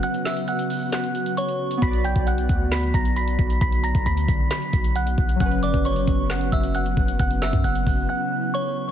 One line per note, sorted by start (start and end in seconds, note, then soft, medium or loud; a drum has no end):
0.00 1.79 C#3 medium
0.00 1.76 F#3 medium
0.00 5.36 F#3 medium
0.00 3.57 B3 medium
0.00 1.78 C#4 medium
0.00 5.36 F#4 medium
0.00 1.81 B4 medium
0.00 0.22 F#5 medium
0.00 0.21 F#6 loud
0.00 closed hi-hat medium
0.14 closed hi-hat medium
0.25 0.44 E5 medium
0.25 0.44 E6 medium
0.25 snare medium
0.25 clap medium
0.25 closed hi-hat medium
0.37 closed hi-hat medium
0.48 0.90 F#5 medium
0.48 0.90 F#6 medium
0.48 closed hi-hat medium
0.59 closed hi-hat medium
0.70 open hi-hat medium
0.92 1.35 F#5 medium
0.92 1.35 F#6 medium
0.92 snare loud
0.92 clap loud
0.92 closed hi-hat medium
1.04 closed hi-hat medium
1.15 closed hi-hat medium
1.26 closed hi-hat medium
1.37 1.80 C#5 medium
1.37 1.79 C#6 medium
1.37 closed hi-hat medium
1.49 closed hi-hat medium
1.71 closed hi-hat medium
1.77 5.34 B3 medium
1.82 2.14 B1 loud
1.82 5.37 D3 medium
1.82 5.36 F#4 medium
1.82 2.00 B5 medium
1.82 2.01 B6 medium
1.82 kick loud
1.82 closed hi-hat medium
1.87 5.39 D5 medium
1.93 closed hi-hat medium
2.04 2.23 G5 medium
2.04 2.23 G6 medium
2.04 closed hi-hat medium
2.16 2.48 B1 loud
2.16 kick loud
2.16 closed hi-hat medium
2.27 2.69 F#5 medium
2.27 2.69 F#6 medium
2.27 closed hi-hat medium
2.38 closed hi-hat medium
2.49 2.92 D2 loud
2.49 kick loud
2.49 closed hi-hat medium
2.72 2.90 B5 medium
2.72 2.90 B6 medium
2.72 snare loud
2.72 clap loud
2.72 closed hi-hat loud
2.83 closed hi-hat medium
2.94 3.37 B1 loud
2.94 3.12 A#5 medium
2.94 3.13 A#6 medium
2.94 kick loud
2.94 closed hi-hat medium
3.05 closed hi-hat medium
3.16 3.59 B5 medium
3.16 3.59 B6 medium
3.16 closed hi-hat medium
3.28 closed hi-hat medium
3.39 3.60 B1 loud
3.39 kick medium
3.50 closed hi-hat medium
3.61 3.93 B1 loud
3.61 5.39 C#3 medium
3.61 3.79 B5 medium
3.61 3.80 B6 medium
3.61 kick loud
3.61 closed hi-hat medium
3.72 closed hi-hat medium
3.84 4.02 A#5 medium
3.84 4.02 A#6 medium
3.84 closed hi-hat medium
3.95 4.06 B1 loud
3.95 kick loud
3.95 closed hi-hat medium
4.06 4.27 D2 loud
4.06 4.48 B5 medium
4.06 4.49 B6 medium
4.06 closed hi-hat medium
4.17 closed hi-hat medium
4.28 4.50 B1 loud
4.28 kick loud
4.28 closed hi-hat medium
4.51 4.93 B5 medium
4.51 4.93 B6 medium
4.51 snare loud
4.51 clap loud
4.51 closed hi-hat loud
4.62 closed hi-hat medium
4.73 5.16 B1 loud
4.73 kick loud
4.73 closed hi-hat medium
4.84 closed hi-hat medium
4.96 5.38 F#5 medium
4.96 5.38 F#6 medium
4.96 closed hi-hat medium
5.07 closed hi-hat medium
5.18 5.39 B1 loud
5.18 kick medium
5.29 closed hi-hat medium
5.36 8.92 F#3 medium
5.40 5.73 F#1 loud
5.40 8.92 C#3 medium
5.40 8.92 F#3 medium
5.40 8.92 B3 medium
5.40 8.92 C#4 medium
5.40 7.18 F#4 medium
5.40 5.59 F#5 medium
5.40 5.59 F#6 medium
5.40 kick loud
5.40 closed hi-hat medium
5.45 8.92 B4 medium
5.52 closed hi-hat medium
5.63 5.81 D5 medium
5.63 5.81 D6 medium
5.63 closed hi-hat medium
5.74 6.06 F#1 loud
5.74 kick loud
5.74 closed hi-hat medium
5.85 6.28 C#5 medium
5.85 6.27 C#6 medium
5.85 closed hi-hat medium
5.96 closed hi-hat medium
6.07 6.50 F#1 loud
6.07 kick loud
6.07 closed hi-hat medium
6.30 6.49 F#5 medium
6.30 6.48 F#6 medium
6.30 snare loud
6.30 clap loud
6.30 closed hi-hat loud
6.41 closed hi-hat medium
6.52 6.95 F#1 loud
6.52 6.71 E5 medium
6.52 6.71 E6 medium
6.52 kick loud
6.52 closed hi-hat medium
6.63 closed hi-hat medium
6.75 7.17 F#5 medium
6.75 7.17 F#6 medium
6.75 closed hi-hat medium
6.86 closed hi-hat medium
6.97 7.19 F#1 loud
6.97 kick medium
7.08 closed hi-hat medium
7.19 7.52 F#1 loud
7.19 8.92 E4 medium
7.19 7.38 F#5 medium
7.19 7.38 F#6 loud
7.19 kick loud
7.19 closed hi-hat medium
7.31 closed hi-hat medium
7.42 7.61 E5 medium
7.42 7.60 E6 medium
7.42 snare medium
7.42 clap medium
7.42 closed hi-hat medium
7.53 7.64 F#2 loud
7.53 kick loud
7.53 closed hi-hat medium
7.64 7.86 F#1 loud
7.64 8.07 F#5 medium
7.64 8.06 F#6 medium
7.64 closed hi-hat medium
7.75 closed hi-hat medium
7.87 8.08 F#1 loud
7.87 kick loud
7.87 open hi-hat medium
8.09 8.51 F#5 medium
8.09 8.51 F#6 medium
8.54 8.92 C#5 medium
8.54 8.92 C#6 medium